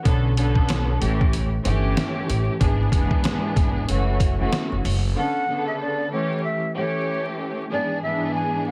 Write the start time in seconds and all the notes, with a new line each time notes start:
0.04 B1 D3 B3 C#4 A4, kick, closed hi-hat
0.37 D3 B3 C#4 A4, closed hi-hat
0.55 kick
0.69 snare, closed hi-hat
1.00 A1 E3 A3 C#4 G4, closed hi-hat
1.21 kick
1.33 closed hi-hat
1.63 G1 E3 A3 C#4 G4, closed hi-hat
1.97 snare, closed hi-hat
2.29 A1, closed hi-hat
2.59 G#1 G#2 E3 B3 D4 G#4, kick, closed hi-hat
2.92 F#1 G#2 E3 B3 D4 G#4, kick, closed hi-hat
3.11 kick
3.24 snare, closed hi-hat
3.56 G#1, kick, snare, closed hi-hat
3.87 F#1 E3 A3 C#4 F#4, closed hi-hat
4.20 kick, closed hi-hat
4.39 E3 A3 C#4 F#4
4.52 snare, closed hi-hat
4.72 F#1
4.85 F#1, open hi-hat
5.15 D3 B3 C#4 A4 F#5
5.48 C#3 D3 B3 A4
5.67 E5
5.81 D5
6.11 E3 A3 C#4 G4 C#5
6.44 E5
6.74 E3 A3 C#4 G4 C#5
7.70 G#2 E3 B3 D4 G#4 D5
8.02 G#2 E3 B3 D4 G#4 E5
8.35 G#5
8.67 F#5